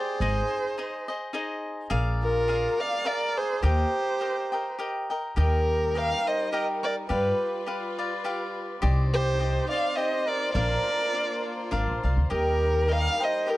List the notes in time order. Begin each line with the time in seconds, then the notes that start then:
Already playing: G4 G#4 C5 D5
0.20 G#1 D#4 G#4 C5 D#5
0.78 D#4 G#4 C5 D#5
1.08 G#4 C5 D#5
1.33 D#4 G#4 C5 D#5
1.90 A#1 G#4 A#4 D5 F5
2.23 F4 A#4
2.48 G#4 A#4 D5 F5
2.80 D5 F5
3.05 G#4 A#4 D5 F5
3.37 G#4 C5
3.63 D#2 G4 A#4 C5 D#5 G5
4.20 G4 A#4 D#5 G5
4.52 A#4 D#5 G5
4.79 G4 A#4 D#5 G5
5.10 A#4 D#5 G5
5.36 D#2 G3 D#4 G4 A#4 D#5 G5
5.95 G4 A#4 D#5 F5 G5
6.27 C5 D#5
6.52 G4 A#4 D#5 G5
6.83 A#4 D5
7.08 G2 F4 G4 B4 D5 F5
7.66 G4 B4 D5 F5
7.99 B4 D5 F5
8.24 G4 B4 D5 F5
8.82 C2 C4 D#4 G4 C5 D5 D#5
9.13 G4 C5
9.39 G4 C5 D5 D#5
9.68 D5 F5
9.72 C5 D#5
9.96 G4 C5 D5 D#5
10.26 A#4 D5
10.53 A#1 A#3 D4 F4 A#4 D5 F5
11.13 D4 A#4 D5 F5
11.71 G#1 D4 A#4 D5 F5
11.88 A#1
12.03 C2 A#4 D5 F5
12.17 D2
12.29 D#2 G3 D#4 G4 A#4 D#5 G5
12.88 G4 A#4 D#5 G5
12.92 F5
13.20 A#4 C5 D#5 G5
13.47 G4 A#4 D#5 G5